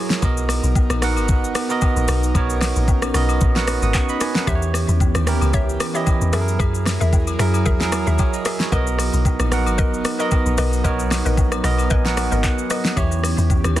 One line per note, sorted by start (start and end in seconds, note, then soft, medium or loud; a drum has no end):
0.00 0.20 F#3 medium
0.00 0.25 F#3 medium
0.00 0.20 E4 medium
0.00 0.25 E4 medium
0.00 0.20 G#4 medium
0.00 0.25 G#4 medium
0.00 0.20 A#4 medium
0.00 0.25 C#5 loud
0.10 snare medium
0.10 shaker medium
0.22 0.60 B1 loud
0.22 0.87 B3 medium
0.22 2.33 B3 medium
0.22 4.44 D#4 medium
0.22 0.87 F#4 medium
0.22 4.44 A#4 medium
0.22 0.88 A#4 medium
0.22 0.88 D#5 medium
0.22 kick loud
0.22 high agogo medium
0.22 shaker medium
0.37 shaker medium
0.49 cross-stick medium
0.49 open hi-hat medium
0.49 high agogo medium
0.49 shaker loud
0.63 0.88 B1 medium
0.63 shaker medium
0.76 kick loud
0.76 low woodblock medium
0.76 shaker medium
0.90 1.18 A#1 medium
0.90 cross-stick medium
0.90 high agogo medium
0.90 shaker medium
1.02 1.55 B3 medium
1.02 1.55 F#4 medium
1.02 1.56 A#4 medium
1.02 1.56 F#5 loud
1.02 cross-stick loud
1.02 open hi-hat medium
1.02 shaker loud
1.16 1.52 G#1 medium
1.16 high agogo medium
1.16 shaker medium
1.28 kick loud
1.28 shaker medium
1.44 shaker medium
1.55 cross-stick loud
1.55 open hi-hat medium
1.55 high agogo medium
1.55 shaker loud
1.69 2.23 B3 medium
1.69 2.23 F#4 medium
1.69 2.23 A#4 medium
1.69 2.24 D#5 loud
1.69 shaker medium
1.81 kick medium
1.81 high agogo medium
1.81 low woodblock medium
1.81 shaker medium
1.96 2.07 A#1 medium
1.96 shaker medium
2.08 2.33 B1 medium
2.08 cross-stick loud
2.08 open hi-hat medium
2.08 high agogo medium
2.08 shaker loud
2.23 shaker medium
2.34 2.73 B1 loud
2.34 2.99 B3 medium
2.34 6.29 C#4 medium
2.34 3.00 F#4 medium
2.34 3.00 A#4 medium
2.34 3.01 C#5 medium
2.34 kick loud
2.34 high agogo medium
2.34 shaker medium
2.50 shaker medium
2.61 cross-stick medium
2.61 snare medium
2.61 open hi-hat medium
2.61 high agogo medium
2.61 shaker loud
2.76 3.12 A#1 medium
2.76 shaker medium
2.88 kick loud
2.88 low woodblock medium
2.88 shaker medium
3.02 cross-stick medium
3.02 high agogo medium
3.02 shaker medium
3.14 3.39 B1 loud
3.14 3.47 B3 medium
3.14 3.47 F#4 medium
3.14 3.48 A#4 medium
3.14 3.48 D#5 loud
3.14 cross-stick loud
3.14 open hi-hat medium
3.14 shaker loud
3.29 high agogo medium
3.29 shaker medium
3.41 3.79 A#1 loud
3.41 kick loud
3.41 shaker medium
3.55 4.29 B3 medium
3.55 4.30 F#4 medium
3.55 3.68 A#4 medium
3.55 3.69 F#5 medium
3.55 snare medium
3.55 shaker medium
3.67 cross-stick loud
3.67 open hi-hat medium
3.67 high agogo medium
3.67 shaker loud
3.82 3.93 G#1 medium
3.82 3.94 F#5 medium
3.82 3.94 D#6 medium
3.82 shaker medium
3.94 4.08 C#6 medium
3.94 kick medium
3.94 clap medium
3.94 high agogo medium
3.94 low woodblock medium
3.94 shaker medium
4.09 4.21 D#5 medium
4.09 4.20 B5 medium
4.09 shaker medium
4.20 4.35 B4 medium
4.20 4.35 G#5 medium
4.20 cross-stick loud
4.20 open hi-hat medium
4.20 high agogo medium
4.20 shaker loud
4.35 4.61 A#4 medium
4.35 4.61 F#5 medium
4.35 snare medium
4.35 shaker medium
4.47 4.85 E2 loud
4.47 5.12 E3 medium
4.47 6.31 E3 medium
4.47 6.31 B3 medium
4.47 5.12 E4 medium
4.47 4.96 G4 medium
4.47 6.31 G4 medium
4.47 5.13 G4 medium
4.47 4.55 C5 medium
4.47 4.97 C#5 medium
4.47 4.97 E5 loud
4.47 kick loud
4.47 high agogo medium
4.47 shaker medium
4.55 5.16 C#5 medium
4.62 shaker medium
4.74 cross-stick medium
4.74 open hi-hat medium
4.74 high agogo medium
4.74 shaker loud
4.89 5.13 E2 loud
4.89 shaker medium
5.00 kick loud
5.00 low woodblock medium
5.00 shaker medium
5.15 5.40 D#2 loud
5.15 cross-stick loud
5.15 high agogo medium
5.15 shaker medium
5.26 5.80 E3 medium
5.26 5.80 E4 medium
5.26 5.81 G4 medium
5.26 5.81 A#4 loud
5.26 cross-stick loud
5.26 open hi-hat medium
5.26 shaker loud
5.41 5.77 C#2 medium
5.41 high agogo medium
5.41 shaker medium
5.53 5.91 G4 medium
5.53 5.91 C#5 medium
5.53 5.91 E5 loud
5.53 kick loud
5.53 shaker medium
5.69 shaker medium
5.80 cross-stick loud
5.80 open hi-hat medium
5.80 high agogo medium
5.80 shaker loud
5.94 6.33 E3 medium
5.94 6.32 E4 medium
5.94 6.06 G4 medium
5.94 6.34 G4 medium
5.94 6.06 C#5 medium
5.94 6.34 D#5 loud
5.94 6.06 E5 medium
5.94 shaker medium
6.06 kick medium
6.06 high agogo medium
6.06 low woodblock medium
6.06 shaker medium
6.21 6.35 E2 medium
6.21 shaker medium
6.33 6.58 F#2 loud
6.33 7.18 F#3 loud
6.33 8.70 F#3 medium
6.33 8.70 E4 medium
6.33 7.19 E4 medium
6.33 8.70 G#4 medium
6.33 6.47 G#4 medium
6.33 7.19 G#4 medium
6.33 6.41 A4 medium
6.33 8.70 A#4 medium
6.33 6.47 A#4 medium
6.33 6.47 E5 medium
6.33 cross-stick loud
6.33 open hi-hat medium
6.33 high agogo medium
6.33 shaker loud
6.41 7.23 A#4 loud
6.48 shaker medium
6.59 6.98 F#2 loud
6.59 6.97 G#4 loud
6.59 6.97 A#4 medium
6.59 6.97 E5 loud
6.59 kick loud
6.59 high agogo medium
6.59 shaker medium
6.75 shaker medium
6.86 cross-stick medium
6.86 snare medium
6.86 open hi-hat medium
6.86 high agogo medium
6.86 shaker loud
7.00 7.37 E2 medium
7.00 7.12 G#4 medium
7.00 7.12 A#4 medium
7.00 7.12 E5 medium
7.00 shaker medium
7.13 kick loud
7.13 low woodblock medium
7.13 shaker medium
7.27 high agogo medium
7.27 shaker medium
7.39 7.68 F#2 loud
7.39 7.71 F#3 medium
7.39 7.72 E4 medium
7.39 7.53 G#4 medium
7.39 7.72 G#4 medium
7.39 7.53 A#4 medium
7.39 7.73 A#4 loud
7.39 7.53 E5 medium
7.39 cross-stick loud
7.39 open hi-hat medium
7.39 shaker loud
7.54 high agogo medium
7.54 shaker medium
7.65 8.04 E2 loud
7.65 7.80 G#4 loud
7.65 7.80 A#4 medium
7.65 7.80 E5 loud
7.65 kick loud
7.65 shaker medium
7.80 8.54 F#3 medium
7.80 8.19 E4 medium
7.80 8.19 G#4 medium
7.80 8.20 A#4 medium
7.80 snare medium
7.80 shaker medium
7.92 cross-stick loud
7.92 open hi-hat medium
7.92 high agogo medium
7.92 shaker loud
8.07 8.18 D#2 medium
8.07 8.42 G#4 medium
8.07 8.43 A#4 medium
8.07 8.43 E5 medium
8.07 shaker medium
8.18 8.34 E4 medium
8.18 8.33 C#5 medium
8.18 kick medium
8.18 high agogo medium
8.18 low woodblock medium
8.18 shaker medium
8.34 8.45 F#4 medium
8.34 8.45 D#5 medium
8.34 shaker medium
8.45 8.70 G#4 medium
8.45 8.60 G#4 medium
8.45 8.70 A#4 medium
8.45 8.70 E5 medium
8.45 8.60 E5 medium
8.45 cross-stick loud
8.45 open hi-hat medium
8.45 high agogo medium
8.45 shaker loud
8.60 8.86 E4 medium
8.60 8.86 C#5 medium
8.60 snare medium
8.60 shaker medium
8.71 9.10 B1 loud
8.71 12.93 F#3 medium
8.71 9.37 B3 medium
8.71 13.80 B3 medium
8.71 12.93 D#4 medium
8.71 9.37 F#4 medium
8.71 9.21 A#4 loud
8.71 9.37 A#4 medium
8.71 9.21 B4 medium
8.71 9.22 D#5 loud
8.71 9.38 D#5 loud
8.71 kick loud
8.71 high agogo medium
8.71 shaker medium
8.87 shaker medium
8.99 cross-stick medium
8.99 open hi-hat medium
8.99 high agogo medium
8.99 shaker loud
9.14 9.38 B1 medium
9.14 shaker medium
9.25 kick loud
9.25 low woodblock medium
9.25 shaker medium
9.40 9.68 A#1 medium
9.40 cross-stick medium
9.40 high agogo medium
9.40 shaker medium
9.51 10.05 B3 medium
9.51 10.05 F#4 medium
9.51 10.05 A#4 medium
9.51 10.06 F#5 medium
9.51 cross-stick loud
9.51 open hi-hat medium
9.51 shaker loud
9.66 10.02 G#1 medium
9.66 high agogo medium
9.66 shaker medium
9.78 10.16 A#4 loud
9.78 10.16 B4 medium
9.78 10.16 D#5 loud
9.78 kick loud
9.78 shaker medium
9.94 shaker medium
10.05 cross-stick loud
10.05 open hi-hat medium
10.05 high agogo medium
10.05 shaker loud
10.19 10.72 B3 medium
10.19 10.73 F#4 medium
10.19 10.31 A#4 medium
10.19 10.73 A#4 medium
10.19 10.31 B4 medium
10.19 10.31 D#5 medium
10.19 10.73 D#5 loud
10.19 shaker medium
10.31 kick medium
10.31 high agogo medium
10.31 low woodblock medium
10.31 shaker medium
10.46 10.57 A#1 medium
10.46 shaker medium
10.58 10.82 B1 medium
10.58 10.72 A#4 medium
10.58 10.72 B4 medium
10.58 10.72 D#5 medium
10.58 cross-stick loud
10.58 open hi-hat medium
10.58 high agogo medium
10.58 shaker loud
10.73 shaker medium
10.84 11.22 B1 loud
10.84 11.49 B3 medium
10.84 11.49 F#4 medium
10.84 11.22 A#4 loud
10.84 11.50 A#4 medium
10.84 11.22 B4 medium
10.84 11.50 C#5 loud
10.84 11.22 D#5 loud
10.84 kick loud
10.84 high agogo medium
10.84 shaker medium
10.99 shaker medium
11.11 cross-stick medium
11.11 snare medium
11.11 open hi-hat medium
11.11 high agogo medium
11.11 shaker loud
11.25 11.61 A#1 medium
11.25 11.37 A#4 medium
11.25 11.37 B4 medium
11.25 11.37 D#5 medium
11.25 shaker medium
11.37 kick loud
11.37 low woodblock medium
11.37 shaker medium
11.52 cross-stick medium
11.52 high agogo medium
11.52 shaker medium
11.63 11.89 B1 loud
11.63 11.96 B3 medium
11.63 11.97 F#4 medium
11.63 11.78 A#4 medium
11.63 11.97 A#4 medium
11.63 11.78 B4 medium
11.63 11.78 D#5 medium
11.63 11.97 D#5 loud
11.63 11.89 A#5 medium
11.63 cross-stick loud
11.63 open hi-hat medium
11.63 shaker loud
11.78 high agogo medium
11.78 shaker medium
11.90 12.29 A#1 loud
11.90 12.04 A#4 loud
11.90 12.04 B4 medium
11.90 12.05 D#5 loud
11.90 12.41 G#5 medium
11.90 kick loud
11.90 shaker medium
12.05 12.79 B3 medium
12.05 12.79 F#4 medium
12.05 12.80 A#4 medium
12.05 12.43 F#5 medium
12.05 snare medium
12.05 shaker medium
12.17 cross-stick loud
12.17 open hi-hat medium
12.17 high agogo medium
12.17 shaker loud
12.32 12.43 G#1 loud
12.32 12.67 A#4 medium
12.32 12.68 B4 medium
12.32 12.68 D#5 medium
12.32 shaker medium
12.44 12.69 F#5 medium
12.44 kick medium
12.44 clap medium
12.44 high agogo medium
12.44 low woodblock medium
12.44 shaker medium
12.58 shaker medium
12.70 12.95 A#4 medium
12.70 12.95 B4 medium
12.70 12.95 D#5 medium
12.70 cross-stick loud
12.70 open hi-hat medium
12.70 high agogo medium
12.70 shaker loud
12.85 snare medium
12.85 shaker medium
12.96 13.35 E2 loud
12.96 13.61 E3 medium
12.96 13.80 E3 medium
12.96 13.80 C#4 medium
12.96 13.62 E4 medium
12.96 13.46 G4 loud
12.96 13.80 G4 medium
12.96 13.62 G4 medium
12.96 13.46 C#5 medium
12.96 13.62 C#5 loud
12.96 13.46 E5 loud
12.96 kick loud
12.96 high agogo medium
12.96 shaker medium
13.12 shaker medium
13.24 cross-stick medium
13.24 open hi-hat medium
13.24 high agogo medium
13.24 shaker loud
13.38 13.63 E2 loud
13.38 shaker medium
13.50 kick loud
13.50 low woodblock medium
13.50 shaker medium
13.64 13.80 D#2 medium
13.64 cross-stick medium
13.64 high agogo medium
13.64 shaker medium
13.76 13.80 E3 medium
13.76 13.80 E4 medium
13.76 cross-stick medium
13.76 open hi-hat medium
13.76 shaker loud